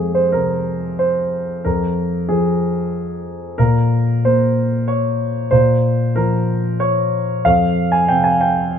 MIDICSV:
0, 0, Header, 1, 2, 480
1, 0, Start_track
1, 0, Key_signature, -4, "minor"
1, 0, Tempo, 678733
1, 697, Tempo, 652174
1, 1178, Time_signature, 3, 2, 24, 8
1, 3097, Tempo, 641026
1, 6498, End_track
2, 0, Start_track
2, 0, Title_t, "Grand piano"
2, 0, Program_c, 0, 0
2, 0, Control_c, 0, 64, 127
2, 0, Note_on_c, 0, 41, 44
2, 0, Note_on_c, 0, 68, 60
2, 99, Note_off_c, 0, 68, 0
2, 103, Note_on_c, 0, 72, 58
2, 223, Note_off_c, 0, 72, 0
2, 228, Note_on_c, 0, 48, 33
2, 228, Note_on_c, 0, 70, 60
2, 700, Note_on_c, 0, 72, 64
2, 702, Note_off_c, 0, 70, 0
2, 1151, Note_off_c, 0, 41, 0
2, 1179, Note_off_c, 0, 72, 0
2, 1182, Note_on_c, 0, 70, 62
2, 1189, Control_c, 0, 64, 0
2, 1190, Note_on_c, 0, 41, 45
2, 1302, Control_c, 0, 64, 127
2, 1654, Note_on_c, 0, 68, 63
2, 1656, Note_off_c, 0, 70, 0
2, 1661, Note_on_c, 0, 53, 32
2, 1753, Note_off_c, 0, 48, 0
2, 2588, Note_off_c, 0, 41, 0
2, 2607, Note_on_c, 0, 70, 68
2, 2611, Note_off_c, 0, 68, 0
2, 2615, Note_off_c, 0, 53, 0
2, 2615, Note_on_c, 0, 46, 47
2, 2626, Control_c, 0, 64, 0
2, 2729, Control_c, 0, 64, 127
2, 3094, Note_off_c, 0, 70, 0
2, 3099, Note_on_c, 0, 72, 66
2, 3103, Note_on_c, 0, 58, 35
2, 3570, Note_on_c, 0, 73, 64
2, 3576, Note_off_c, 0, 72, 0
2, 4019, Note_off_c, 0, 46, 0
2, 4041, Note_on_c, 0, 72, 73
2, 4044, Note_off_c, 0, 73, 0
2, 4052, Note_on_c, 0, 46, 51
2, 4059, Control_c, 0, 64, 0
2, 4198, Control_c, 0, 64, 127
2, 4526, Note_on_c, 0, 70, 66
2, 4528, Note_off_c, 0, 72, 0
2, 4535, Note_on_c, 0, 53, 38
2, 4632, Note_off_c, 0, 58, 0
2, 5009, Note_on_c, 0, 73, 71
2, 5016, Note_off_c, 0, 70, 0
2, 5471, Note_off_c, 0, 46, 0
2, 5493, Note_off_c, 0, 73, 0
2, 5495, Note_on_c, 0, 77, 78
2, 5499, Note_on_c, 0, 41, 50
2, 5500, Note_off_c, 0, 53, 0
2, 5511, Control_c, 0, 64, 0
2, 5626, Control_c, 0, 64, 127
2, 5846, Note_on_c, 0, 80, 72
2, 5851, Note_off_c, 0, 77, 0
2, 5969, Note_off_c, 0, 80, 0
2, 5972, Note_on_c, 0, 79, 77
2, 5977, Note_on_c, 0, 48, 39
2, 6086, Note_on_c, 0, 80, 70
2, 6093, Note_off_c, 0, 79, 0
2, 6211, Note_off_c, 0, 80, 0
2, 6214, Note_on_c, 0, 79, 74
2, 6498, Note_off_c, 0, 41, 0
2, 6498, Note_off_c, 0, 48, 0
2, 6498, Note_off_c, 0, 79, 0
2, 6498, End_track
0, 0, End_of_file